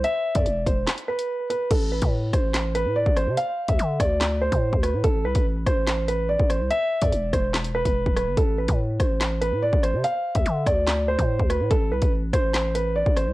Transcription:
<<
  \new Staff \with { instrumentName = "Grand piano" } { \time 4/4 \key a \minor \tempo 4 = 144 e''8. d''8. c''8 r8 b'4 b'8 | a'8 b'8 r8 c''4 b'8 d''8 c''8 | f''8. e''8. d''4 c''4 b'8 | a'8 b'8 r8 c''4 b'8 d''8 c''8 |
e''8. d''8. c''8 r8 b'4 b'8 | a'8 b'8 r8 c''4 b'8 d''8 c''8 | f''8. e''8. d''4 c''4 b'8 | a'8 b'8 r8 c''4 b'8 d''8 c''8 | }
  \new Staff \with { instrumentName = "808-style bass" } { \clef bass \time 4/4 \key a \minor r8. e,16 e,,8 e,,8 r2 | a,,8. a,8. a,,4~ a,,16 a,8 a,,8 c16 | r8. d,16 d8 d,4~ d,16 a,8 d,8 a,16 | a,,8 c,16 a,,8. a,,4.~ a,,16 a,,8 c,16 |
r8. e,16 e,,8 e,,4~ e,,16 e,,8 d,,8 g,,16 | a,,8. a,8. a,,4~ a,,16 a,8 a,,8 c16 | r8. d,16 d8 d,4~ d,16 a,8 d,8 a,16 | a,,8 c,16 a,,8. a,,4.~ a,,16 a,,8 c,16 | }
  \new DrumStaff \with { instrumentName = "Drums" } \drummode { \time 4/4 hh8. <hh bd>16 hh8 <hh bd>8 <hc hh sn>16 hh8 hh16 r8 hh8 | <cymc hh bd>8. <hh bd>16 r8 <hh bd ss>8 <hc hh sn>8 hh8 r16 bd16 <hh ss>8 | hh8. <hh bd>16 hh8 <hh bd ss>8 <hc hh sn>8. <hh bd>16 r16 bd16 <hh ss>8 | <hh bd>8. <hh bd>16 r8 <hh bd ss>8 <hc hh sn>8 hh8 r16 bd16 <hh ss>8 |
hh8. <hh bd>16 hh8 <hh bd ss>8 <hc hh sn>16 hh8 <hh bd>16 r16 bd16 <hh ss>8 | <hh bd>8. <hh bd>16 r8 <hh bd ss>8 <hc hh sn>8 hh8 r16 bd16 <hh ss>8 | hh8. <hh bd>16 hh8 <hh bd ss>8 <hc hh sn>8. <hh bd>16 r16 bd16 <hh ss>8 | <hh bd>8. <hh bd>16 r8 <hh bd ss>8 <hc hh sn>8 hh8 r16 bd16 <hh ss>8 | }
>>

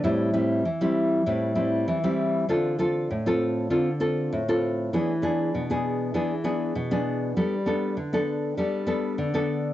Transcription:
\new Staff \with { instrumentName = "Nylon-string guitar" } { \time 4/4 \key a \minor \tempo 4 = 98 << { <g c' e'>8 <g c' e'>8 r16 <g c' e'>8. <g c' e'>8 <g c' e'>8. <g c' e'>8. | <c' f' a'>8 <c' f' a'>8 r16 <c' f' a'>8. <c' f' a'>16 r16 <c' f' a'>8. <c' f' a'>8. | <b d' gis'>16 r16 <b d' gis'>8. <b d' gis'>8. <b d' gis'>16 r16 <b d' gis'>8 r16 <b d' gis'>8. | <b d' a'>16 r16 <b d' a'>8 r16 <b d' a'>8. <b d' a'>8 <b d' a'>8. <b d' a'>8. | } \\ { a,4 e4 a,4 e4 | d4 a,4 d4 a,4 | e4 b,4 e4 b,4 | g4 d4 g4 d4 | } >> }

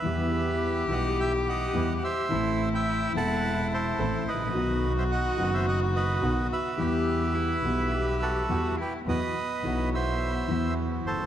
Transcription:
<<
  \new Staff \with { instrumentName = "Bandoneon" } { \time 4/4 \key e \minor \tempo 4 = 106 << { e''4. fis''8 g''8 fis''8.~ fis''32 fis''32 e''8~ | e''8. g''8. a''4 c''4 dis''8~ | dis''8. e''16 fis''8. e''16 fis''8 dis''4 e''8~ | e''2~ e''8 a'4 b'8 |
dis''4. e''4. r8 c''8 | } \\ { b'4. dis''8 e''8 dis''4 c''8~ | c''8. e''8. fis''4 a'4 b'8~ | b'8. c''16 dis''8. c''16 dis''8 b'4 b'8~ | b'2~ b'8 fis'4 g'8 |
b'4. c''4. r8 a'8 | } >> }
  \new Staff \with { instrumentName = "Cello" } { \time 4/4 \key e \minor g'1 | e'1 | fis'1 | g'4 e'4 g'4 fis'8 e'8 |
b1 | }
  \new Staff \with { instrumentName = "Bandoneon" } { \time 4/4 \key e \minor <b e' g'>4. <b e' g'>4. <b e' g'>8 r8 | <c' e' a'>4. <c' e' a'>4. <c' e' a'>8 r8 | <b dis' fis'>4. <b dis' fis'>4. <b dis' fis'>8 r8 | <b e' g'>4. <b e' g'>4. <b e' g'>8 r8 |
<b e' fis'>8 r8 <fis e' fis'>4. <b e' fis'>4. | }
  \new Staff \with { instrumentName = "Upright piano" } { \clef bass \time 4/4 \key e \minor << { <e, e g b g'>4. <b,, b, e g b g'>4. <e, e g b g'>8 r8 | <a,, a, e a c' a'>4. <e,, e, e a c' a'>4. <a,, a, e a c' a'>8 r8 | <b,, b, dis fis b fis'>4. <fis,, fis, dis fis b fis'>4. <b,, b, dis fis b fis'>8 r8 | <e, e g b g'>4. <b,, b, e g b g'>4. <e, e g b g'>8 r8 |
<e, e fis b fis'>8 r8 <b,, b, e fis fis'>4. <e, e fis b fis'>4. | } \\ { r1 | r2. r8 r32 gis,,32 a,,32 ais,,32 | r1 | r1 |
r2. r8 r32 fis,,32 g,,32 r32 | } >> }
  \new Staff \with { instrumentName = "Double bass" } { \clef bass \time 4/4 \key e \minor e,4. b,,4. e,8 r8 | a,,4. e,,4. a,,8 a,,8 | b,,4. fis,,4. b,,8 r8 | e,4. b,,4. e,8 r8 |
e,8 r8 b,,4. e,4 g,,8 | }
>>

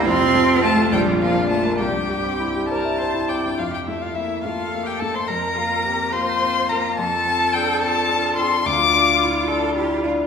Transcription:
<<
  \new Staff \with { instrumentName = "Violin" } { \time 6/8 \key f \major \tempo 4. = 71 c'''4 a''8 g''8 f''8 a''8 | g''4. a''4 g''8 | f''16 g''16 e''16 f''16 e''8 f''8. g''16 a''16 c'''16 | bes''4. c'''4 bes''8 |
a''4 g''8 a''4 c'''8 | d'''4. r4. | }
  \new Staff \with { instrumentName = "Viola" } { \time 6/8 \key f \major f'2. | g'4. bes'8 c''8 d''8 | f'16 g'16 e'16 f'16 e'8 f'8. g'16 a'16 c''16 | bes'4. c''4 bes'8 |
f'4. f'4. | f'2. | }
  \new Staff \with { instrumentName = "Cello" } { \time 6/8 \key f \major c'4 a8 g8 f8 a8 | g4. r4. | r4. a'4. | bes'8 f'8 g'8 f'4. |
a'2. | f'4. a'8 g'8 f'8 | }
  \new Staff \with { instrumentName = "Grand piano" } { \time 6/8 \key f \major f,16 c16 a16 c'16 f'16 a'16 bes,,16 f,16 bes16 d'16 f'16 bes'16 | c,16 g,16 g16 c'16 e'16 g'16 c''16 e''16 c''16 e'16 c'16 g,16 | f,8 a8 bes8 a8 bes8 a8 | f,8 bes8 c'8 bes8 c'8 bes8 |
f,8 c'8 d'8 c'8 d'8 c'8 | d,8 d'8 e'8 d'8 e'8 d'8 | }
>>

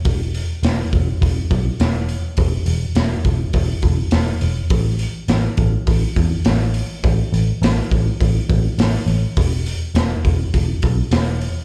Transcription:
<<
  \new Staff \with { instrumentName = "Picked electric bass" } { \clef bass \time 4/4 \key a \dorian \tempo 4 = 103 e,,4 e,,8 e,,8 e,,8 b,,8 e,,4 | e,,8 e,,8 e,,8 e,,8 e,,8 e,,8 e,,8 e,,8 | a,,4 a,,8 a,,8 a,,8 e,8 a,,4 | a,,8 a,,8 a,,8 a,,8 a,,8 a,,8 a,,8 a,,8 |
e,,4 e,,8 e,,8 e,,8 b,,8 e,,4 | }
  \new DrumStaff \with { instrumentName = "Drums" } \drummode { \time 4/4 <hho bd>8 hho8 <hho sn>8 <hho bd>8 <hho bd>8 <hho bd>8 <hho sn>8 hho8 | <hho bd>8 hho8 <hho sn>8 <hho bd>8 <hho bd>8 <hho bd>8 <hho sn>8 hho8 | <hho bd>8 hho8 <hho sn>8 <hho bd>8 <hho bd>8 <hho bd>8 <hho sn>8 hho8 | <hho bd>8 hho8 <hho sn>8 <hho bd>8 <hho bd>8 <hho bd>8 <hho sn>8 hho8 |
<hho bd>8 hho8 <hho sn>8 <hho bd>8 <hho bd>8 <hho bd>8 <hho sn>8 hho8 | }
>>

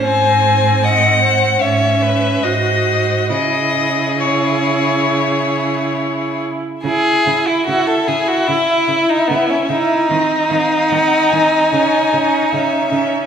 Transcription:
<<
  \new Staff \with { instrumentName = "Violin" } { \time 4/4 \key cis \minor \tempo 4 = 74 gis''4 fis''4 e''4 dis''4 | dis''4 cis''2~ cis''8 r8 | e''1 | dis''8 eis''8 fis''8 gis''4. e''4 | }
  \new Staff \with { instrumentName = "Violin" } { \time 4/4 \key cis \minor bis'4 dis''8 bis'8 cis''8 b'8 bis'4 | gis'2.~ gis'8 r8 | gis'8. e'16 fis'16 a'16 gis'16 fis'16 e'8. dis'16 b16 cis'16 dis'8~ | dis'1 | }
  \new Staff \with { instrumentName = "Viola" } { \time 4/4 \key cis \minor bis2 cis'4 fis'4 | e'4 e'2~ e'8. r16 | e'8 e'8 e'8 e'8 e'8 e'8 e'8 e'8 | bis8 bis8 bis8 bis8 cis'8 cis'8 cis'8 cis'8 | }
  \new Staff \with { instrumentName = "Cello" } { \clef bass \time 4/4 \key cis \minor gis,2 gis,4 gis,4 | cis2.~ cis8. r16 | cis8 cis8 cis8 cis8 cis8 cis8 cis8 cis8 | dis8 dis8 dis8 dis8 cis8 cis8 cis8 cis8 | }
>>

